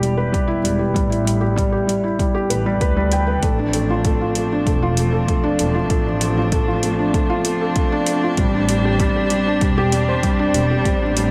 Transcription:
0.00 0.43 E1 medium
0.00 0.02 G3 medium
0.00 0.17 G3 medium
0.00 0.48 E4 medium
0.00 0.79 G4 medium
0.00 closed hi-hat soft
0.18 0.33 B4 medium
0.32 0.48 G3 medium
0.32 kick medium
0.32 closed hi-hat soft
0.48 0.57 E4 medium
0.64 0.88 E1 medium
0.64 0.79 G3 medium
0.64 closed hi-hat medium
0.79 0.94 G4 medium
0.94 1.98 A1 medium
0.94 1.10 G3 medium
0.94 kick medium
0.94 closed hi-hat soft
1.10 1.25 E4 medium
1.10 closed hi-hat soft
1.25 1.41 G3 medium
1.25 closed hi-hat medium
1.41 1.56 G4 medium
1.56 1.72 G3 medium
1.56 kick medium
1.56 closed hi-hat soft
1.72 1.88 G4 medium
1.87 2.03 G3 medium
1.87 closed hi-hat soft
2.04 2.19 E4 medium
2.19 2.34 G3 medium
2.19 kick medium
2.19 closed hi-hat soft
2.35 2.50 G4 medium
2.50 2.74 A1 medium
2.50 2.65 B4 medium
2.50 closed hi-hat medium
2.66 2.75 G3 medium
2.81 3.37 D2 medium
2.81 2.96 B4 medium
2.81 kick medium
2.81 closed hi-hat soft
2.97 3.06 G3 medium
3.12 3.21 G5 medium
3.12 closed hi-hat medium
3.27 3.42 B4 medium
3.43 4.45 A1 medium
3.43 8.34 F3 medium
3.43 3.58 A3 medium
3.43 11.31 C4 medium
3.43 11.31 D4 medium
3.43 kick loud
3.43 closed hi-hat soft
3.59 3.74 D4 medium
3.73 3.89 A3 medium
3.73 closed hi-hat medium
3.90 4.05 F4 medium
4.05 4.20 A3 medium
4.05 kick medium
4.05 closed hi-hat soft
4.21 4.36 F4 medium
4.35 4.51 A3 medium
4.35 closed hi-hat medium
4.52 4.67 D4 medium
4.67 5.38 E1 medium
4.67 4.82 A3 medium
4.67 kick medium
4.67 closed hi-hat soft
4.82 4.97 F4 medium
4.97 5.13 A3 medium
4.97 closed hi-hat medium
5.12 5.28 A4 medium
5.28 5.43 A3 medium
5.28 kick medium
5.28 closed hi-hat soft
5.44 5.53 D4 loud
5.59 5.83 E1 medium
5.59 5.74 A3 medium
5.59 closed hi-hat medium
5.75 5.90 F4 medium
5.90 6.93 A1 medium
5.90 6.05 A3 medium
5.90 kick loud
5.90 closed hi-hat soft
6.06 6.21 D4 medium
6.21 6.36 A3 medium
6.21 closed hi-hat medium
6.38 6.52 F4 medium
6.52 6.67 A3 medium
6.52 kick loud
6.52 closed hi-hat soft
6.68 6.83 F4 medium
6.83 6.99 A3 medium
6.83 closed hi-hat medium
6.99 7.14 D4 medium
7.14 7.29 A3 medium
7.14 kick loud
7.14 closed hi-hat soft
7.30 7.45 F4 medium
7.45 7.60 A3 medium
7.45 closed hi-hat medium
7.61 7.76 A4 medium
7.76 7.91 A3 medium
7.76 kick loud
7.76 closed hi-hat soft
7.92 8.01 D4 loud
8.06 8.22 A3 medium
8.06 closed hi-hat medium
8.23 8.38 F4 medium
8.37 9.40 A1 medium
8.37 8.53 G3 medium
8.37 11.31 G3 medium
8.37 kick loud
8.37 closed hi-hat soft
8.54 8.69 D4 medium
8.69 8.84 G3 medium
8.69 closed hi-hat medium
8.85 9.00 G4 medium
9.00 9.15 G3 loud
9.00 kick loud
9.00 closed hi-hat soft
9.16 9.30 G4 medium
9.30 9.46 G3 medium
9.30 closed hi-hat medium
9.47 9.61 D4 medium
9.61 10.33 E1 medium
9.61 9.77 G3 medium
9.61 kick loud
9.61 closed hi-hat soft
9.78 9.92 G4 loud
9.92 10.07 G3 medium
9.92 closed hi-hat medium
10.09 10.23 C5 medium
10.23 10.39 G3 medium
10.23 kick loud
10.23 closed hi-hat soft
10.39 10.48 D4 loud
10.54 10.78 E1 medium
10.54 10.69 G3 medium
10.54 closed hi-hat medium
10.71 10.85 G4 medium
10.85 11.31 A1 medium
10.85 11.01 G3 medium
10.85 kick loud
10.85 closed hi-hat soft
11.02 11.16 D4 medium
11.17 11.31 G3 medium
11.17 closed hi-hat medium

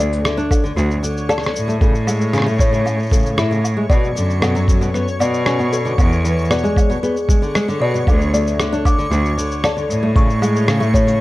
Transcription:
0.00 0.18 D2 medium
0.00 0.23 A3 medium
0.00 11.21 C#5 medium
0.00 0.23 D5 medium
0.00 11.21 C#6 medium
0.13 cabasa soft
0.25 0.37 D3 medium
0.25 cross-stick loud
0.25 cabasa soft
0.37 0.62 D4 medium
0.37 cabasa soft
0.51 0.76 A4 medium
0.51 kick loud
0.51 cabasa medium
0.51 low woodblock medium
0.64 0.71 D3 medium
0.64 cabasa soft
0.77 0.94 D2 loud
0.77 0.89 F#4 medium
0.77 cross-stick soft
0.77 cabasa soft
0.91 cabasa soft
1.03 1.28 D3 medium
1.03 cabasa medium
1.17 cabasa soft
1.29 1.41 A4 medium
1.29 1.54 D5 medium
1.29 cross-stick soft
1.29 cabasa soft
1.29 low woodblock medium
1.38 1.49 D3 medium
1.38 cross-stick medium
1.43 cross-stick medium
1.43 cabasa soft
1.55 3.31 A2 medium
1.55 cabasa medium
1.68 1.75 A3 medium
1.68 cabasa soft
1.81 1.94 C#3 medium
1.81 2.06 A4 medium
1.81 kick loud
1.81 cabasa soft
1.95 cabasa soft
2.07 2.32 G#3 medium
2.07 cabasa medium
2.07 low woodblock medium
2.21 cabasa soft
2.33 2.46 C#3 loud
2.33 cross-stick soft
2.33 cabasa soft
2.38 cross-stick medium
2.42 cross-stick medium
2.46 2.71 A3 medium
2.46 cabasa soft
2.50 cabasa soft
2.53 cabasa soft
2.55 cabasa soft
2.58 2.85 C#5 medium
2.58 kick loud
2.58 cabasa soft
2.60 cabasa medium
2.73 2.80 C#3 medium
2.73 cabasa soft
2.86 2.98 C#4 medium
2.86 cabasa soft
2.86 low woodblock medium
3.00 cabasa soft
3.03 cabasa soft
3.06 cabasa soft
3.09 3.36 C#3 medium
3.09 3.37 A4 medium
3.09 kick medium
3.09 cabasa soft
3.13 cabasa medium
3.16 cabasa soft
3.22 cabasa soft
3.26 cabasa soft
3.38 3.83 A2 medium
3.38 3.50 E4 medium
3.38 cross-stick medium
3.38 cabasa soft
3.51 3.58 C#3 medium
3.51 cabasa soft
3.64 cabasa medium
3.64 low woodblock medium
3.77 3.84 G#3 medium
3.90 4.07 B2 medium
3.90 4.02 B2 medium
3.90 4.15 D5 medium
3.90 kick loud
3.90 cabasa soft
4.04 cabasa soft
4.16 5.00 F#2 medium
4.16 4.41 D3 medium
4.16 cabasa medium
4.30 cabasa soft
4.42 4.54 B2 loud
4.42 4.67 A4 medium
4.42 cross-stick medium
4.42 cabasa soft
4.42 low woodblock medium
4.55 4.80 F#3 medium
4.55 cabasa soft
4.68 kick loud
4.68 cabasa medium
4.81 4.89 B2 medium
4.81 cabasa soft
4.94 5.07 B3 medium
4.94 cross-stick soft
4.94 cabasa soft
5.08 cabasa soft
5.20 5.92 B2 medium
5.20 5.45 B2 medium
5.20 5.45 D5 medium
5.20 cabasa medium
5.20 low woodblock medium
5.34 cabasa soft
5.46 5.59 C#4 medium
5.46 cross-stick loud
5.46 cabasa soft
5.59 5.67 B2 medium
5.59 cabasa soft
5.73 5.97 A4 medium
5.73 cabasa medium
5.85 5.93 D3 medium
5.85 cabasa soft
5.98 6.44 E2 medium
5.98 6.11 B2 medium
5.98 kick loud
5.98 cabasa soft
5.98 low woodblock medium
6.12 cabasa soft
6.25 6.49 E3 medium
6.25 cabasa medium
6.38 cabasa soft
6.45 cabasa soft
6.51 6.63 B2 medium
6.51 6.75 D5 medium
6.51 cross-stick medium
6.51 cabasa soft
6.58 cabasa soft
6.64 6.88 G#3 medium
6.64 cabasa soft
6.77 kick loud
6.77 cabasa medium
6.77 low woodblock medium
6.90 6.97 B2 medium
6.90 cabasa soft
7.03 7.15 B3 medium
7.03 7.28 G#4 medium
7.03 cabasa soft
7.17 cabasa soft
7.29 7.41 G#3 medium
7.29 kick loud
7.29 cabasa medium
7.42 7.54 D3 medium
7.42 cabasa soft
7.55 7.68 G#3 medium
7.55 cross-stick loud
7.55 cabasa soft
7.68 7.80 D3 loud
7.68 cabasa soft
7.81 7.98 B2 medium
7.81 8.06 D5 medium
7.94 8.06 B2 medium
7.94 cabasa soft
8.07 8.52 D2 medium
8.07 8.20 D3 medium
8.07 kick loud
8.07 cabasa soft
8.07 low woodblock medium
8.21 cabasa soft
8.34 8.58 A3 medium
8.34 8.58 D5 medium
8.34 cabasa medium
8.47 cabasa soft
8.59 8.72 D3 medium
8.59 cross-stick medium
8.59 cabasa soft
8.72 8.97 D4 medium
8.72 cabasa soft
8.85 9.10 D6 medium
8.85 kick loud
8.85 cabasa medium
8.85 low woodblock medium
8.99 9.06 D3 medium
8.99 cabasa soft
9.11 9.29 D2 loud
9.11 9.24 F#4 medium
9.11 cross-stick soft
9.11 cabasa soft
9.25 cabasa soft
9.38 9.62 D3 medium
9.38 cabasa medium
9.51 cabasa soft
9.64 9.76 A4 medium
9.64 9.89 D5 medium
9.64 cross-stick medium
9.64 cabasa soft
9.64 low woodblock medium
9.77 9.84 D3 medium
9.77 cabasa soft
9.89 11.21 A2 medium
9.89 cabasa medium
10.03 10.10 A3 medium
10.16 10.28 C#3 medium
10.16 10.41 C#6 medium
10.16 kick loud
10.16 cabasa soft
10.30 cabasa soft
10.42 10.67 G#3 medium
10.42 cabasa medium
10.42 low woodblock medium
10.56 cabasa soft
10.68 10.80 C#3 loud
10.68 cross-stick medium
10.68 cabasa soft
10.80 11.05 A3 medium
10.80 cabasa soft
10.94 11.19 C#5 medium
10.94 kick medium
10.94 cabasa medium
11.07 11.14 C#3 medium
11.07 cabasa soft

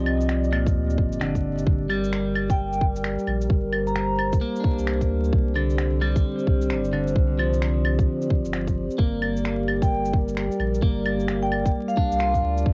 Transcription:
0.00 0.74 C2 loud
0.00 1.30 F3 medium
0.00 1.62 C4 medium
0.00 1.62 G4 medium
0.00 3.46 D5 medium
0.00 1.63 D#5 medium
0.06 claves medium
0.21 shaker medium
0.29 finger snap loud
0.44 shaker soft
0.52 1.86 A#2 medium
0.52 finger snap medium
0.52 claves medium
0.66 kick loud
0.66 shaker medium
0.75 0.97 D2 loud
0.90 shaker soft
0.98 1.19 G1 loud
0.98 kick loud
1.12 shaker medium
1.21 1.66 G1 medium
1.21 1.86 D3 medium
1.21 finger snap loud
1.35 kick medium
1.35 shaker soft
1.58 shaker medium
1.66 2.57 G1 loud
1.66 5.29 G3 medium
1.66 8.95 G4 medium
1.66 5.29 A#4 medium
1.66 kick loud
1.89 3.36 G3 medium
1.89 claves medium
2.04 shaker medium
2.13 finger snap loud
2.35 claves medium
2.50 2.81 G5 medium
2.50 kick loud
2.50 shaker medium
2.59 3.17 G1 loud
2.73 shaker soft
2.81 kick loud
2.96 shaker medium
3.04 finger snap loud
3.19 shaker soft
3.27 3.49 A#1 loud
3.27 claves soft
3.41 shaker medium
3.49 4.40 G1 loud
3.49 5.31 C5 medium
3.49 kick loud
3.72 claves medium
3.87 4.33 A#5 medium
3.87 shaker medium
3.95 finger snap loud
4.18 claves medium
4.32 kick loud
4.32 shaker medium
4.41 5.52 A#3 medium
4.56 shaker soft
4.60 5.68 D4 medium
4.64 kick loud
4.79 5.09 C2 medium
4.79 shaker medium
4.87 finger snap loud
5.01 kick medium
5.01 shaker soft
5.10 5.32 D2 loud
5.24 shaker medium
5.33 6.24 C2 loud
5.33 8.96 C4 medium
5.33 8.96 C5 medium
5.33 12.73 D5 medium
5.33 kick loud
5.56 6.92 D3 medium
5.56 claves medium
5.70 shaker medium
5.78 finger snap loud
6.01 7.48 G3 medium
6.01 claves medium
6.16 kick loud
6.16 shaker medium
6.39 shaker soft
6.47 6.72 C2 medium
6.47 kick loud
6.62 shaker medium
6.70 7.15 G1 medium
6.70 finger snap loud
6.85 shaker soft
6.93 8.39 D3 medium
6.93 claves soft
7.08 shaker medium
7.16 8.07 C2 loud
7.16 kick loud
7.39 8.85 F3 medium
7.39 claves medium
7.53 shaker medium
7.62 finger snap loud
7.85 claves medium
7.99 kick loud
7.99 shaker medium
8.22 shaker soft
8.30 kick loud
8.45 8.89 G1 loud
8.45 shaker medium
8.53 finger snap loud
8.67 kick medium
8.67 shaker soft
8.91 shaker medium
8.98 9.90 G1 loud
8.98 12.63 G3 medium
8.98 10.45 A#3 medium
8.98 12.62 G4 medium
8.98 12.62 A#4 medium
8.98 kick loud
9.22 claves medium
9.37 shaker medium
9.45 finger snap loud
9.68 claves medium
9.82 10.14 G5 medium
9.82 kick loud
9.82 shaker medium
9.90 10.49 G1 loud
10.05 shaker soft
10.13 kick loud
10.28 shaker medium
10.37 finger snap loud
10.52 shaker soft
10.59 10.81 A#1 loud
10.59 claves soft
10.74 shaker medium
10.82 11.73 G1 loud
10.82 12.29 A#3 medium
10.82 kick loud
11.06 claves medium
11.20 shaker medium
11.28 finger snap loud
11.42 11.66 G5 medium
11.52 claves medium
11.65 kick loud
11.65 shaker medium
11.88 12.51 F5 medium
11.88 shaker soft
11.97 12.73 D4 medium
11.97 kick loud
12.12 12.42 C2 medium
12.12 shaker medium
12.20 12.73 F4 medium
12.20 finger snap loud
12.34 kick medium
12.34 shaker soft
12.43 12.64 D2 loud
12.57 shaker medium
12.66 12.73 C2 loud
12.66 12.73 C4 medium
12.66 12.73 G4 medium
12.66 kick loud

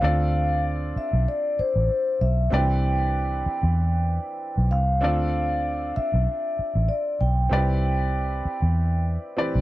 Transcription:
0.00 0.92 D2 loud
0.00 2.47 C4 medium
0.00 2.48 D4 medium
0.00 2.48 F4 medium
0.00 2.49 A4 medium
0.00 0.61 F5 loud
0.04 2.49 D5 medium
0.96 1.26 E5 medium
0.96 muted fingered electric bass stroke medium
1.13 1.26 B1 loud
1.28 1.60 D5 loud
1.59 2.23 C5 loud
1.59 muted fingered electric bass stroke soft
1.76 1.88 A1 medium
2.21 2.48 B1 loud
2.21 2.50 E5 loud
2.50 3.42 C2 loud
2.50 4.97 C4 medium
2.50 2.59 D4 soft
2.50 4.98 G4 medium
2.50 4.98 B4 medium
2.50 4.99 D5 medium
2.50 4.77 G5 loud
2.58 5.01 E3 medium
3.46 muted fingered electric bass stroke medium
3.63 4.18 E2 loud
4.57 4.72 B1 medium
4.71 5.03 C2 medium
4.71 5.92 F5 loud
5.01 5.92 D2 loud
5.01 7.47 C4 medium
5.01 7.47 D4 medium
5.01 7.48 F4 medium
5.01 7.48 A4 medium
5.01 7.48 D5 medium
5.96 6.92 E5 medium
5.96 muted fingered electric bass stroke medium
6.14 6.26 B1 loud
6.59 muted fingered electric bass stroke soft
6.75 6.88 A1 loud
6.89 7.21 D5 medium
7.21 7.48 B1 medium
7.21 9.03 G5 loud
7.49 8.41 C2 loud
7.49 9.33 C4 medium
7.49 7.58 D#4 medium
7.49 9.34 G4 medium
7.49 9.35 B4 medium
7.49 9.35 D5 medium
7.57 9.37 E4 medium
8.45 muted fingered electric bass stroke medium
8.62 9.17 E2 medium
9.37 9.61 E3 medium
9.37 9.61 C4 medium
9.37 9.61 G4 medium
9.37 9.61 B4 medium
9.37 9.61 D5 medium
9.55 9.61 B1 medium

